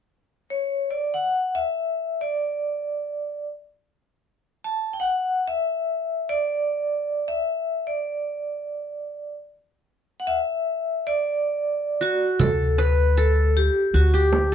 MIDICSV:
0, 0, Header, 1, 6, 480
1, 0, Start_track
1, 0, Tempo, 500000
1, 13966, End_track
2, 0, Start_track
2, 0, Title_t, "Vibraphone"
2, 0, Program_c, 0, 11
2, 484, Note_on_c, 0, 73, 57
2, 867, Note_off_c, 0, 73, 0
2, 870, Note_on_c, 0, 74, 56
2, 1077, Note_off_c, 0, 74, 0
2, 1093, Note_on_c, 0, 78, 67
2, 1488, Note_on_c, 0, 76, 67
2, 1490, Note_off_c, 0, 78, 0
2, 2123, Note_on_c, 0, 74, 60
2, 2134, Note_off_c, 0, 76, 0
2, 3314, Note_off_c, 0, 74, 0
2, 4458, Note_on_c, 0, 81, 70
2, 4737, Note_on_c, 0, 79, 55
2, 4740, Note_off_c, 0, 81, 0
2, 4798, Note_on_c, 0, 78, 72
2, 4802, Note_off_c, 0, 79, 0
2, 5225, Note_off_c, 0, 78, 0
2, 5256, Note_on_c, 0, 76, 73
2, 6041, Note_on_c, 0, 74, 70
2, 6070, Note_off_c, 0, 76, 0
2, 6989, Note_on_c, 0, 76, 67
2, 7020, Note_off_c, 0, 74, 0
2, 7554, Note_on_c, 0, 74, 52
2, 7560, Note_off_c, 0, 76, 0
2, 8982, Note_off_c, 0, 74, 0
2, 9789, Note_on_c, 0, 78, 61
2, 9855, Note_off_c, 0, 78, 0
2, 9860, Note_on_c, 0, 76, 76
2, 10625, Note_on_c, 0, 74, 77
2, 10642, Note_off_c, 0, 76, 0
2, 11544, Note_on_c, 0, 66, 78
2, 11723, Note_off_c, 0, 74, 0
2, 11918, Note_on_c, 0, 69, 80
2, 11920, Note_off_c, 0, 66, 0
2, 12284, Note_on_c, 0, 71, 80
2, 12292, Note_off_c, 0, 69, 0
2, 12647, Note_on_c, 0, 69, 75
2, 12659, Note_off_c, 0, 71, 0
2, 13025, Note_on_c, 0, 67, 79
2, 13026, Note_off_c, 0, 69, 0
2, 13397, Note_on_c, 0, 66, 70
2, 13399, Note_off_c, 0, 67, 0
2, 13579, Note_off_c, 0, 66, 0
2, 13582, Note_on_c, 0, 67, 73
2, 13955, Note_off_c, 0, 67, 0
2, 13966, End_track
3, 0, Start_track
3, 0, Title_t, "Qanun"
3, 0, Program_c, 1, 107
3, 11529, Note_on_c, 1, 66, 57
3, 11899, Note_on_c, 1, 69, 73
3, 12273, Note_on_c, 1, 71, 73
3, 12644, Note_off_c, 1, 69, 0
3, 12648, Note_on_c, 1, 69, 69
3, 12776, Note_off_c, 1, 66, 0
3, 13322, Note_off_c, 1, 71, 0
3, 13383, Note_on_c, 1, 66, 59
3, 13572, Note_on_c, 1, 67, 58
3, 13630, Note_off_c, 1, 66, 0
3, 13772, Note_off_c, 1, 69, 0
3, 13966, Note_off_c, 1, 67, 0
3, 13966, End_track
4, 0, Start_track
4, 0, Title_t, "Upright bass"
4, 0, Program_c, 2, 32
4, 11903, Note_on_c, 2, 38, 88
4, 13124, Note_off_c, 2, 38, 0
4, 13378, Note_on_c, 2, 38, 73
4, 13966, Note_off_c, 2, 38, 0
4, 13966, End_track
5, 0, Start_track
5, 0, Title_t, "Darbuka"
5, 11902, Note_on_c, 9, 64, 72
5, 11998, Note_off_c, 9, 64, 0
5, 12272, Note_on_c, 9, 63, 66
5, 12368, Note_off_c, 9, 63, 0
5, 13014, Note_on_c, 9, 62, 21
5, 13110, Note_off_c, 9, 62, 0
5, 13753, Note_on_c, 9, 63, 64
5, 13849, Note_off_c, 9, 63, 0
5, 13966, End_track
6, 0, Start_track
6, 0, Title_t, "Frame drum"
6, 11902, Note_on_c, 9, 64, 67
6, 11998, Note_off_c, 9, 64, 0
6, 13753, Note_on_c, 9, 64, 57
6, 13849, Note_off_c, 9, 64, 0
6, 13966, End_track
0, 0, End_of_file